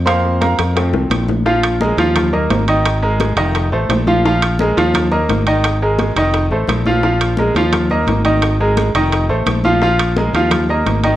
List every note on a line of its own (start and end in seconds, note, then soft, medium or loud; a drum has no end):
0.00 0.53 F2 medium
0.05 0.55 F3 medium
0.05 0.56 A#3 medium
0.05 0.56 C4 medium
0.05 0.39 C5 medium
0.05 0.39 F5 medium
0.05 0.38 C6 loud
0.05 high bongo medium
0.05 high conga soft
0.05 high timbale medium
0.23 high bongo soft
0.23 high conga soft
0.41 0.74 A#4 medium
0.41 0.74 F5 medium
0.41 0.74 A#5 medium
0.41 high bongo medium
0.41 high conga medium
0.41 high timbale medium
0.58 0.91 F2 medium
0.58 high bongo medium
0.58 high conga soft
0.58 high timbale medium
0.75 1.26 F3 medium
0.75 1.26 A3 medium
0.75 1.26 C4 medium
0.75 high bongo medium
0.75 high conga soft
0.75 high timbale medium
0.93 1.10 C2 medium
0.93 low bongo loud
0.93 high conga soft
1.10 1.92 A#1 medium
1.10 low bongo medium
1.10 high conga medium
1.10 high timbale medium
1.29 low bongo medium
1.29 high conga medium
1.46 1.75 F3 medium
1.46 1.75 F4 medium
1.46 1.75 F5 medium
1.46 high bongo medium
1.46 high conga soft
1.64 high bongo soft
1.64 high conga soft
1.64 high timbale loud
1.81 1.95 G#3 medium
1.81 1.95 G#4 medium
1.81 1.95 A#4 medium
1.81 high bongo medium
1.81 high conga loud
1.97 2.47 D#2 loud
1.97 2.27 F3 medium
1.97 2.27 F4 medium
1.97 2.27 F5 medium
1.97 high bongo soft
1.97 high conga soft
1.97 high timbale medium
2.16 high bongo medium
2.16 high conga soft
2.16 low conga medium
2.16 high timbale medium
2.33 2.62 A#3 medium
2.33 2.62 A#4 medium
2.33 2.62 D#5 medium
2.33 high bongo soft
2.33 high conga soft
2.33 low conga medium
2.50 3.32 G#1 medium
2.50 high bongo soft
2.50 low bongo medium
2.50 high conga medium
2.50 high timbale medium
2.50 low timbale medium
2.68 2.97 D#3 medium
2.68 2.97 D#4 medium
2.68 2.97 D#5 medium
2.68 high timbale medium
2.85 high bongo medium
2.85 high conga soft
2.85 high timbale loud
3.02 3.31 G#3 medium
3.02 3.31 G#4 medium
3.02 3.32 A#4 medium
3.02 high bongo soft
3.02 high conga soft
3.20 high bongo medium
3.20 high conga medium
3.20 high timbale medium
3.36 3.69 F1 loud
3.36 3.66 D#3 medium
3.36 3.66 D#4 medium
3.36 3.66 D#5 medium
3.36 high bongo soft
3.36 high timbale medium
3.55 high bongo medium
3.55 high conga soft
3.55 high timbale medium
3.72 3.89 A1 medium
3.72 4.01 A3 medium
3.72 4.01 A4 medium
3.72 4.02 C5 medium
3.72 high bongo soft
3.72 high conga soft
3.89 4.71 A#1 medium
3.89 high bongo soft
3.89 low bongo medium
3.89 high conga medium
3.89 high timbale loud
3.89 low timbale medium
4.07 4.22 F3 medium
4.07 4.22 F4 medium
4.07 4.22 F5 medium
4.07 high conga medium
4.25 4.54 F3 medium
4.25 4.54 F4 medium
4.25 4.54 F5 medium
4.25 high bongo medium
4.25 high conga soft
4.42 high bongo soft
4.42 high conga soft
4.42 high timbale loud
4.59 4.74 G#3 medium
4.59 4.74 G#4 medium
4.59 4.74 A#4 medium
4.59 high bongo medium
4.59 high conga loud
4.77 5.26 D#2 loud
4.77 5.06 F3 medium
4.77 5.06 F4 medium
4.77 5.06 F5 medium
4.77 high bongo soft
4.77 high conga soft
4.77 high timbale medium
4.94 high bongo medium
4.94 high conga soft
4.94 low conga medium
4.94 high timbale loud
5.12 5.40 A#3 medium
5.12 5.40 A#4 medium
5.12 5.41 D#5 medium
5.12 high bongo soft
5.12 high conga soft
5.12 low conga medium
5.29 6.11 G#1 medium
5.29 high bongo soft
5.29 low bongo medium
5.29 high conga medium
5.29 high timbale medium
5.47 5.75 D#3 medium
5.47 5.76 D#4 medium
5.47 5.76 D#5 medium
5.47 high timbale medium
5.64 high bongo medium
5.64 high conga soft
5.64 high timbale loud
5.81 6.11 G#3 medium
5.81 6.11 G#4 medium
5.81 6.11 A#4 medium
5.81 high bongo soft
5.81 high conga soft
5.99 high bongo medium
5.99 high conga loud
5.99 high timbale medium
6.16 6.49 F1 loud
6.16 6.45 D#3 medium
6.16 6.45 D#4 medium
6.16 6.46 D#5 medium
6.16 high bongo soft
6.16 high conga soft
6.16 high timbale medium
6.33 high bongo medium
6.33 high conga soft
6.33 high timbale medium
6.51 6.67 A1 medium
6.51 6.80 A3 medium
6.51 6.80 A4 medium
6.51 6.80 C5 medium
6.51 high bongo soft
6.51 high conga soft
6.67 7.50 A#1 medium
6.67 high bongo soft
6.67 low bongo medium
6.67 high conga medium
6.67 high timbale medium
6.86 7.00 F3 medium
6.86 7.01 F4 medium
6.86 7.01 F5 medium
6.86 high conga medium
7.03 7.32 F3 medium
7.03 7.32 F4 medium
7.03 7.32 F5 medium
7.03 high bongo medium
7.03 high conga soft
7.20 high bongo soft
7.20 high conga soft
7.20 high timbale loud
7.37 7.53 G#3 medium
7.37 7.53 G#4 medium
7.37 7.53 A#4 medium
7.37 high bongo medium
7.37 high conga loud
7.54 8.04 D#2 medium
7.54 7.85 F3 medium
7.54 7.85 F4 medium
7.54 7.85 F5 medium
7.54 high bongo soft
7.54 high conga soft
7.54 high timbale medium
7.72 high bongo medium
7.72 high conga soft
7.72 low conga medium
7.72 high timbale medium
7.90 8.19 A#3 medium
7.90 8.19 A#4 medium
7.90 8.19 D#5 medium
7.90 high bongo soft
7.90 high conga soft
7.90 low conga medium
8.07 8.89 G#1 medium
8.07 high bongo soft
8.07 low bongo medium
8.07 high conga medium
8.07 high timbale medium
8.24 8.54 D#3 medium
8.24 8.54 D#4 medium
8.24 8.54 D#5 medium
8.24 high conga medium
8.24 high timbale medium
8.42 high bongo medium
8.42 high timbale medium
8.60 8.89 G#3 medium
8.60 8.89 G#4 medium
8.60 8.89 A#4 medium
8.60 high bongo soft
8.60 high conga soft
8.77 high bongo medium
8.77 high conga loud
8.77 high timbale medium
8.94 9.27 F1 loud
8.94 9.24 D#3 medium
8.94 9.24 D#4 medium
8.94 9.24 D#5 medium
8.94 high bongo soft
8.94 high conga soft
8.94 high timbale medium
9.12 high bongo medium
9.12 high conga soft
9.12 high timbale medium
9.29 9.46 A1 medium
9.29 9.58 A3 medium
9.29 9.58 A4 medium
9.29 9.58 C5 medium
9.29 high bongo soft
9.29 high conga soft
9.46 10.28 A#1 medium
9.46 high bongo soft
9.46 low bongo medium
9.46 high conga medium
9.46 high timbale medium
9.64 9.79 F3 medium
9.64 9.79 F4 medium
9.64 9.79 F5 medium
9.64 high conga medium
9.82 10.11 F3 medium
9.82 10.11 F4 medium
9.82 10.11 F5 medium
9.82 high bongo medium
9.82 high conga soft
9.99 high bongo soft
9.99 high conga soft
9.99 high timbale loud
10.16 10.31 G#3 medium
10.16 10.32 G#4 medium
10.16 10.32 A#4 medium
10.16 high bongo medium
10.16 high conga loud
10.33 10.82 D#2 medium
10.33 10.63 F3 medium
10.33 10.64 F4 medium
10.33 10.64 F5 medium
10.33 high bongo soft
10.33 high conga soft
10.33 high timbale medium
10.51 high bongo medium
10.51 high conga soft
10.51 low conga medium
10.51 high timbale loud
10.69 10.98 A#3 medium
10.69 10.98 A#4 medium
10.69 10.98 D#5 medium
10.69 high bongo soft
10.69 high conga soft
10.86 11.16 G#1 medium
10.86 high bongo soft
10.86 low bongo medium
10.86 high conga medium
10.86 high timbale medium
11.04 11.16 D#3 medium
11.04 11.16 D#4 medium
11.04 11.16 D#5 medium
11.04 high conga medium
11.04 high timbale medium